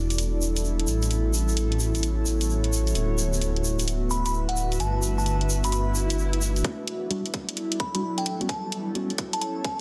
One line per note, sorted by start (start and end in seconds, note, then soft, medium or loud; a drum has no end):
0.00 0.86 E1 medium
0.00 2.92 G3 medium
0.00 6.60 B3 medium
0.00 0.86 D4 medium
0.00 3.71 E4 medium
0.00 6.60 F#4 medium
0.00 3.71 A4 medium
0.00 0.88 D5 medium
0.10 closed hi-hat medium
0.10 shaker soft
0.18 closed hi-hat medium
0.18 shaker soft
0.42 shaker medium
0.56 closed hi-hat medium
0.56 shaker soft
0.65 shaker soft
0.80 closed hi-hat soft
0.87 2.94 A1 medium
0.87 2.93 C#4 medium
0.87 shaker medium
1.02 closed hi-hat soft
1.02 shaker soft
1.11 closed hi-hat medium
1.11 shaker soft
1.34 shaker medium
1.48 shaker medium
1.57 closed hi-hat medium
1.72 closed hi-hat soft
1.80 3.71 C#5 medium
1.80 shaker medium
1.95 closed hi-hat medium
1.95 shaker soft
2.03 closed hi-hat medium
2.03 shaker soft
2.26 shaker medium
2.41 closed hi-hat medium
2.41 shaker soft
2.50 shaker soft
2.64 closed hi-hat soft
2.73 shaker medium
2.87 closed hi-hat soft
2.87 shaker soft
2.95 4.78 D1 medium
2.95 6.61 A3 medium
2.95 4.78 E4 medium
2.95 7.30 F#4 medium
2.95 closed hi-hat medium
2.95 shaker soft
3.18 shaker medium
3.27 7.30 E5 medium
3.33 shaker soft
3.41 closed hi-hat medium
3.41 shaker soft
3.56 closed hi-hat soft
3.64 7.30 B4 medium
3.64 shaker medium
3.79 closed hi-hat medium
3.79 shaker soft
3.87 closed hi-hat medium
3.87 shaker soft
4.11 4.20 B5 medium
4.11 shaker medium
4.26 4.31 B5 medium
4.26 closed hi-hat medium
4.26 shaker soft
4.34 shaker soft
4.49 4.67 F#5 medium
4.49 closed hi-hat soft
4.56 shaker medium
4.72 closed hi-hat soft
4.72 shaker soft
4.80 6.63 G1 medium
4.80 6.63 D4 medium
4.80 5.00 A5 medium
4.80 closed hi-hat medium
4.80 shaker soft
5.03 shaker medium
5.18 5.36 A5 medium
5.18 shaker soft
5.26 closed hi-hat medium
5.26 shaker soft
5.41 closed hi-hat soft
5.50 shaker medium
5.64 5.70 B5 medium
5.64 closed hi-hat medium
5.64 shaker medium
5.72 5.82 B5 medium
5.72 closed hi-hat medium
5.72 swell medium
5.72 shaker soft
5.95 shaker medium
6.10 closed hi-hat medium
6.10 shaker soft
6.19 shaker soft
6.33 closed hi-hat medium
6.42 shaker medium
6.56 closed hi-hat soft
6.56 shaker soft
6.64 7.30 E1 medium
6.64 9.80 F#3 medium
6.64 9.80 G3 medium
6.64 9.80 B3 medium
6.64 8.25 D4 medium
6.64 9.80 E4 medium
6.64 kick loud
6.64 closed hi-hat medium
6.88 open hi-hat loud
7.11 7.21 G3 loud
7.11 7.21 D4 medium
7.11 7.21 F#4 loud
7.11 closed hi-hat medium
7.26 closed hi-hat soft
7.33 7.45 E1 medium
7.33 9.80 A4 medium
7.33 kick loud
7.33 open hi-hat loud
7.38 8.26 D5 medium
7.49 closed hi-hat medium
7.57 closed hi-hat medium
7.72 open hi-hat medium
7.80 7.89 B5 medium
7.80 kick loud
7.80 open hi-hat loud
7.95 8.23 E1 medium
7.95 8.00 G3 medium
7.95 8.00 D4 medium
7.95 8.00 F#4 medium
7.95 8.00 B5 medium
7.95 closed hi-hat medium
8.18 8.32 G5 medium
8.18 closed hi-hat medium
8.26 8.45 A1 medium
8.26 9.80 C#4 medium
8.26 open hi-hat loud
8.41 8.47 G3 medium
8.41 8.47 B3 medium
8.41 8.47 C#4 medium
8.41 8.47 F#4 loud
8.41 closed hi-hat soft
8.49 9.15 A1 loud
8.49 8.69 A5 medium
8.49 kick loud
8.49 closed hi-hat medium
8.67 9.80 C#5 medium
8.72 open hi-hat medium
8.95 9.11 G3 medium
8.95 9.11 B3 medium
8.95 9.11 C#4 medium
8.95 9.11 F#4 loud
8.95 closed hi-hat medium
9.10 closed hi-hat soft
9.18 9.30 A1 loud
9.18 kick loud
9.18 open hi-hat loud
9.33 9.39 A5 medium
9.33 closed hi-hat medium
9.41 9.51 A5 medium
9.41 closed hi-hat medium
9.64 9.80 A5 medium
9.64 kick loud
9.64 open hi-hat loud